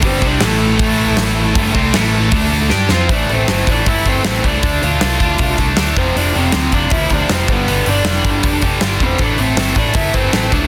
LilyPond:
<<
  \new Staff \with { instrumentName = "Lead electric guitar" } { \time 4/4 \key a \minor \tempo 4 = 157 <c' c''>8 <d' d''>8 <a a'>2.~ | <a a'>2. r8 <c' c''>8 | <d' d''>8 <c' c''>4 <d' d''>8 <e' e''>8 <c' c''>8 <c' c''>8 <d' d''>8~ | <d' d''>8 <f' f''>2 r4 <c' c''>8 |
<d' d''>8 <c' c''>4 <d' d''>8 <e' e''>8 <d' d''>8 <c' c''>8 <b b'>8~ | <b b'>8 <d' d''>2 r4 <c' c''>8 | <d' d''>8 <c' c''>4 <d' d''>8 <e' e''>8 <c' c''>8 <c' c''>8 <d' d''>8 | }
  \new Staff \with { instrumentName = "Distorted electric guitar" } { \clef bass \time 4/4 \key a \minor <g, d g>8 <c g c'>8 <a, e a>2. | <g, d g>8 <c g c'>8 <a, e a>4 <d a d'>4 <g d' g'>8 <f c' f'>8 | <a, e a>8 <a, e a>8 <a, e a>8 <a, e a>8 <a, e a>8 <a, e a>8 <a, e a>8 <a, e a>8 | <d a d'>8 <d a d'>8 <d a d'>8 <d a d'>8 <d a d'>8 <d a d'>8 <d a d'>8 <f, c f>8 |
<f, c f>8 <f, c f>8 <f, c f>8 <f, c f>8 <f, c f>8 <f, c f>8 <f, c f>8 <g, d g>8 | <g, d g>8 <g, d g>8 <g, d g>8 <g, d g>8 <g, d g>8 <g, d g>8 <g, d g>8 <g, d g>8 | <a, e a>8 <a, e a>8 <a, e a>8 <a, e a>8 <a, e a>8 <a, e a>8 <a, e a>8 <a, e a>8 | }
  \new Staff \with { instrumentName = "Picked electric bass" } { \clef bass \time 4/4 \key a \minor g,,8 c,8 a,,2. | g,,8 c,8 a,,4 d,4 g,8 f,8 | a,,8 a,,8 g,,8 a,,8 g,,8 g,,8 a,,8 c,8 | d,8 d,8 c,8 d,8 c,8 c,8 d,8 f,,8 |
f,,8 f,,8 d,8 f,,8 d,8 d,8 f,,8 g,,8 | g,,8 g,,8 f,,8 g,,8 f,,8 f,,8 g,,8 f,,8 | a,,8 a,,8 g,,8 a,,8 g,,8 g,,8 a,,8 cis,8 | }
  \new DrumStaff \with { instrumentName = "Drums" } \drummode { \time 4/4 <hho bd>8 bd8 <hho sn>4 <hho bd>4 <hho sn>4 | <hho bd>8 bd8 <hho sn>4 <hho bd>4 sn8 sn8 | <hho bd>8 hho8 <hho sn>8 <hho bd>8 <hho bd>8 <hho bd>8 <hho sn>8 <hho bd>8 | <hho bd>8 hho8 <hho sn>8 <hho bd>8 <hho bd>8 <hho bd>8 <hho sn>8 <hho bd>8 |
hho8 hho8 <hho sn>8 <hho bd>8 <hho bd>8 <hho bd>8 <hho sn>8 <hho bd>8 | hho8 hho8 <hho sn>8 <hho bd>8 <hho bd>8 <hho bd>8 <hho sn>8 <hho bd>8 | <hho bd>8 hho8 <hho sn>8 <hho bd>8 <hho bd>8 <hho bd>8 <hho sn>8 <hho bd>8 | }
>>